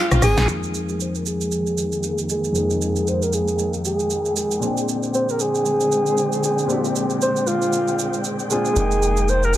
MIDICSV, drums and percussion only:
0, 0, Header, 1, 2, 480
1, 0, Start_track
1, 0, Tempo, 517241
1, 449, Time_signature, 4, 2, 24, 8
1, 8884, End_track
2, 0, Start_track
2, 0, Title_t, "Drums"
2, 105, Note_on_c, 9, 82, 56
2, 106, Note_on_c, 9, 37, 97
2, 107, Note_on_c, 9, 61, 66
2, 198, Note_off_c, 9, 82, 0
2, 199, Note_off_c, 9, 37, 0
2, 200, Note_off_c, 9, 61, 0
2, 206, Note_on_c, 9, 37, 93
2, 206, Note_on_c, 9, 46, 67
2, 206, Note_on_c, 9, 82, 111
2, 207, Note_on_c, 9, 60, 52
2, 298, Note_off_c, 9, 37, 0
2, 299, Note_off_c, 9, 46, 0
2, 299, Note_off_c, 9, 82, 0
2, 300, Note_off_c, 9, 60, 0
2, 345, Note_on_c, 9, 82, 58
2, 347, Note_on_c, 9, 60, 55
2, 349, Note_on_c, 9, 38, 73
2, 438, Note_off_c, 9, 82, 0
2, 439, Note_off_c, 9, 60, 0
2, 442, Note_off_c, 9, 38, 0
2, 448, Note_on_c, 9, 82, 75
2, 541, Note_off_c, 9, 82, 0
2, 587, Note_on_c, 9, 82, 48
2, 680, Note_off_c, 9, 82, 0
2, 690, Note_on_c, 9, 82, 79
2, 783, Note_off_c, 9, 82, 0
2, 824, Note_on_c, 9, 82, 46
2, 917, Note_off_c, 9, 82, 0
2, 930, Note_on_c, 9, 82, 66
2, 1023, Note_off_c, 9, 82, 0
2, 1067, Note_on_c, 9, 82, 51
2, 1160, Note_off_c, 9, 82, 0
2, 1168, Note_on_c, 9, 82, 85
2, 1261, Note_off_c, 9, 82, 0
2, 1307, Note_on_c, 9, 82, 51
2, 1400, Note_off_c, 9, 82, 0
2, 1407, Note_on_c, 9, 82, 73
2, 1500, Note_off_c, 9, 82, 0
2, 1546, Note_on_c, 9, 82, 45
2, 1638, Note_off_c, 9, 82, 0
2, 1649, Note_on_c, 9, 82, 83
2, 1741, Note_off_c, 9, 82, 0
2, 1784, Note_on_c, 9, 82, 49
2, 1876, Note_off_c, 9, 82, 0
2, 1886, Note_on_c, 9, 82, 76
2, 1978, Note_off_c, 9, 82, 0
2, 2025, Note_on_c, 9, 82, 51
2, 2117, Note_off_c, 9, 82, 0
2, 2127, Note_on_c, 9, 82, 103
2, 2220, Note_off_c, 9, 82, 0
2, 2266, Note_on_c, 9, 82, 56
2, 2359, Note_off_c, 9, 82, 0
2, 2367, Note_on_c, 9, 82, 78
2, 2460, Note_off_c, 9, 82, 0
2, 2508, Note_on_c, 9, 82, 52
2, 2601, Note_off_c, 9, 82, 0
2, 2612, Note_on_c, 9, 82, 84
2, 2705, Note_off_c, 9, 82, 0
2, 2746, Note_on_c, 9, 82, 50
2, 2839, Note_off_c, 9, 82, 0
2, 2852, Note_on_c, 9, 82, 64
2, 2945, Note_off_c, 9, 82, 0
2, 2990, Note_on_c, 9, 82, 49
2, 3083, Note_off_c, 9, 82, 0
2, 3088, Note_on_c, 9, 82, 84
2, 3181, Note_off_c, 9, 82, 0
2, 3227, Note_on_c, 9, 82, 49
2, 3320, Note_off_c, 9, 82, 0
2, 3329, Note_on_c, 9, 82, 71
2, 3422, Note_off_c, 9, 82, 0
2, 3466, Note_on_c, 9, 82, 44
2, 3559, Note_off_c, 9, 82, 0
2, 3571, Note_on_c, 9, 82, 84
2, 3664, Note_off_c, 9, 82, 0
2, 3707, Note_on_c, 9, 82, 49
2, 3800, Note_off_c, 9, 82, 0
2, 3807, Note_on_c, 9, 82, 74
2, 3900, Note_off_c, 9, 82, 0
2, 3948, Note_on_c, 9, 82, 52
2, 4041, Note_off_c, 9, 82, 0
2, 4050, Note_on_c, 9, 82, 102
2, 4142, Note_off_c, 9, 82, 0
2, 4186, Note_on_c, 9, 82, 56
2, 4279, Note_off_c, 9, 82, 0
2, 4289, Note_on_c, 9, 82, 77
2, 4382, Note_off_c, 9, 82, 0
2, 4429, Note_on_c, 9, 82, 51
2, 4521, Note_off_c, 9, 82, 0
2, 4534, Note_on_c, 9, 82, 76
2, 4627, Note_off_c, 9, 82, 0
2, 4666, Note_on_c, 9, 82, 48
2, 4759, Note_off_c, 9, 82, 0
2, 4771, Note_on_c, 9, 82, 63
2, 4864, Note_off_c, 9, 82, 0
2, 4909, Note_on_c, 9, 82, 53
2, 5002, Note_off_c, 9, 82, 0
2, 5007, Note_on_c, 9, 82, 85
2, 5100, Note_off_c, 9, 82, 0
2, 5148, Note_on_c, 9, 82, 51
2, 5240, Note_off_c, 9, 82, 0
2, 5248, Note_on_c, 9, 82, 72
2, 5341, Note_off_c, 9, 82, 0
2, 5386, Note_on_c, 9, 82, 46
2, 5479, Note_off_c, 9, 82, 0
2, 5492, Note_on_c, 9, 82, 84
2, 5585, Note_off_c, 9, 82, 0
2, 5627, Note_on_c, 9, 82, 50
2, 5719, Note_off_c, 9, 82, 0
2, 5729, Note_on_c, 9, 82, 71
2, 5822, Note_off_c, 9, 82, 0
2, 5868, Note_on_c, 9, 82, 52
2, 5961, Note_off_c, 9, 82, 0
2, 5971, Note_on_c, 9, 82, 106
2, 6064, Note_off_c, 9, 82, 0
2, 6110, Note_on_c, 9, 82, 54
2, 6203, Note_off_c, 9, 82, 0
2, 6213, Note_on_c, 9, 82, 75
2, 6306, Note_off_c, 9, 82, 0
2, 6353, Note_on_c, 9, 82, 52
2, 6445, Note_off_c, 9, 82, 0
2, 6456, Note_on_c, 9, 82, 81
2, 6549, Note_off_c, 9, 82, 0
2, 6588, Note_on_c, 9, 82, 47
2, 6681, Note_off_c, 9, 82, 0
2, 6695, Note_on_c, 9, 82, 63
2, 6788, Note_off_c, 9, 82, 0
2, 6833, Note_on_c, 9, 82, 50
2, 6926, Note_off_c, 9, 82, 0
2, 6931, Note_on_c, 9, 82, 84
2, 7024, Note_off_c, 9, 82, 0
2, 7070, Note_on_c, 9, 82, 51
2, 7163, Note_off_c, 9, 82, 0
2, 7171, Note_on_c, 9, 82, 73
2, 7264, Note_off_c, 9, 82, 0
2, 7310, Note_on_c, 9, 82, 44
2, 7403, Note_off_c, 9, 82, 0
2, 7414, Note_on_c, 9, 82, 88
2, 7506, Note_off_c, 9, 82, 0
2, 7549, Note_on_c, 9, 82, 49
2, 7641, Note_off_c, 9, 82, 0
2, 7649, Note_on_c, 9, 82, 76
2, 7742, Note_off_c, 9, 82, 0
2, 7788, Note_on_c, 9, 82, 53
2, 7881, Note_off_c, 9, 82, 0
2, 7892, Note_on_c, 9, 82, 102
2, 7985, Note_off_c, 9, 82, 0
2, 8028, Note_on_c, 9, 82, 55
2, 8120, Note_off_c, 9, 82, 0
2, 8130, Note_on_c, 9, 82, 76
2, 8223, Note_off_c, 9, 82, 0
2, 8271, Note_on_c, 9, 82, 54
2, 8364, Note_off_c, 9, 82, 0
2, 8375, Note_on_c, 9, 82, 82
2, 8467, Note_off_c, 9, 82, 0
2, 8507, Note_on_c, 9, 82, 48
2, 8600, Note_off_c, 9, 82, 0
2, 8615, Note_on_c, 9, 82, 64
2, 8708, Note_off_c, 9, 82, 0
2, 8751, Note_on_c, 9, 82, 53
2, 8844, Note_off_c, 9, 82, 0
2, 8850, Note_on_c, 9, 82, 87
2, 8884, Note_off_c, 9, 82, 0
2, 8884, End_track
0, 0, End_of_file